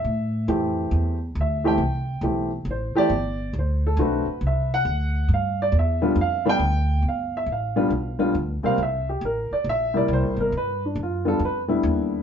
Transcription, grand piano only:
X:1
M:4/4
L:1/8
Q:"Swing" 1/4=137
K:Gmix
V:1 name="Grand piano"
e2 z4 e g- | g2 z2 c d3 | c A B2 e ^f3 | f d e2 f g3 |
f e f3 z2 f | e G _B d e d c B | B D F A B z3 |]
V:2 name="Grand piano"
z2 [E,A,CG]3 z2 [E,A,CG] | z2 [E,A,CG] z2 [E,A,CG] z2 | z2 [D,A,C^F] z4 z | z3 [D,G,B,F] z [D,G,B,D] z2 |
z3 [D,G,B,F] z [D,G,B,F] z [C,G,_B,C] | z4 z [C,G,_B,E]3 | z3 [D,G,B,F] z [D,G,B,E]3 |]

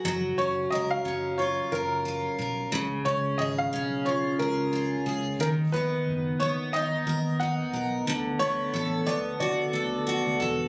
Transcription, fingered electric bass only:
X:1
M:4/4
L:1/16
Q:"Swing 16ths" 1/4=90
K:F#
V:1 name="Fingered electric bass" clef=bass
F,,,2 F,,,2 C,,2 F,,,4 F,,,4 B,,,2 | C,,2 C,,2 G,,,2 B,,,4 C,,4 C,,2 | D,,2 D,,2 F,,,2 D,,4 D,,4 B,,,2 | =D,,2 D,,2 =A,,,2 D,,2 =D,2 D,,3 D,, =E,,,2 |]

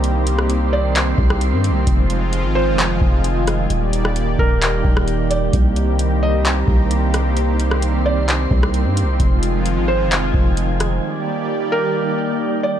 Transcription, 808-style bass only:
X:1
M:4/4
L:1/16
Q:1/4=131
K:Fdor
V:1 name="808-style bass" clef=bass
C,,8- C,,2 C,,3 G,,3/2 C,,3/2 | F,,,4- F,,, A,,,2- A,,,/2 F,,,2- F,,,/2 F,,,6 | E,,,6 E,,,4 E,,,6 | C,,8- C,,2 C,,6- |
C,,8- C,,2 C,,3 G,,3/2 C,,3/2 | F,,,4- F,,, A,,,2- A,,,/2 F,,,2- F,,,/2 F,,,6 | z16 |]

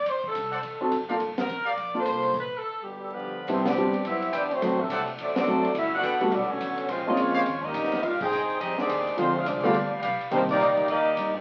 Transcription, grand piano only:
X:1
M:4/4
L:1/8
Q:"Swing" 1/4=211
K:Cdor
V:1 name="Grand piano"
z4 z [CD^FA] z [B,D=FA] | z4 z [B,DFA]3 | z8 | [G,=B,CD=E] z [G,B,CDG] z4 z |
[^F,A,CD^F] z4 z [F,A,CDA] z | z3 [G,A,=B,D^F] z4 | z [_A,B,C_DF]3 z4 | z8 |
[D,F,_A,CF] z2 [D,G,=A,=B,F] z4 | [E,G,B,CD] z6 z |]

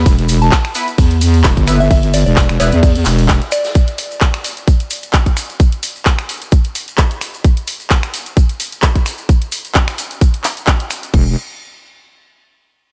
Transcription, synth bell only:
X:1
M:4/4
L:1/16
Q:"Swing 16ths" 1/4=130
K:Em
V:1 name="Synth bell"
z3 a z8 z3 e | e z d d z2 d4 z4 d2 | z16 | z16 |
z16 | z16 | z16 |]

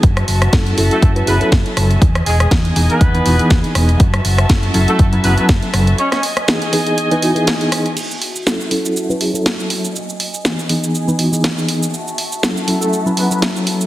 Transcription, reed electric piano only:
X:1
M:4/4
L:1/16
Q:"Swing 16ths" 1/4=121
K:F#dor
V:1 name="Reed electric piano"
z4 [F,CEA]2 [F,CEA]3 [F,CEB] [F,CEG] [F,CEA]4- [F,CEA] | z4 [E,B,DG]2 [E,B,DG]3 [E,B,DB] [E,B,DF] [E,B,DG]4- [E,B,DG] | z4 [F,CEA]2 [F,CEA]3 [F,CEB] [F,CEG] [F,CEA]4- [F,CEA] | z4 [E,B,DG]2 [E,B,DG]3 [E,B,DB] [E,B,DF] [E,B,DG]4- [E,B,DG] |
z4 [F,CEA]2 [F,CEA]3 [F,CEB] [F,CEG] [F,CEA]4- [F,CEA] | z4 [E,B,DG]2 [E,B,DG]3 [E,B,DB] [E,B,DF] [E,B,DG]4- [E,B,DG] | z4 [F,CEA]2 [F,CEA]3 [F,CEB] [F,CEG] [F,CEA]4- [F,CEA] |]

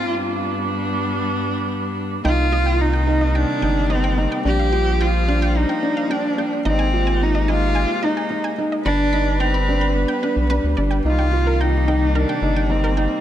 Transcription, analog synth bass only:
X:1
M:4/4
L:1/16
Q:1/4=109
K:Cm
V:1 name="Analog synth bass" clef=bass
z16 | C,,8- C,, z G,,,4- G,,, z | B,,,8- B,,, z6 z | A,,,8- A,,, z6 z |
G,,,8- G,,, z2 =B,,,2 D,, G,,,2 | C,,8- C,, z G,,,4- G,,, z |]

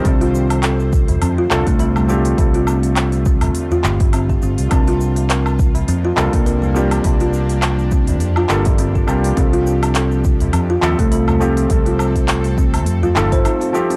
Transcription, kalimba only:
X:1
M:4/4
L:1/16
Q:"Swing 16ths" 1/4=103
K:Dphr
V:1 name="Kalimba"
C F z2 A4 C F z A, A G, C2- | C F z4 C3 F G2 C G C2 | C F z2 B4 C F z B, B G, C2- | C F z4 C3 F G2 C G C2 |
C F z2 A4 C F z A, A G, C2- | C F z4 C3 F E c E F F C |]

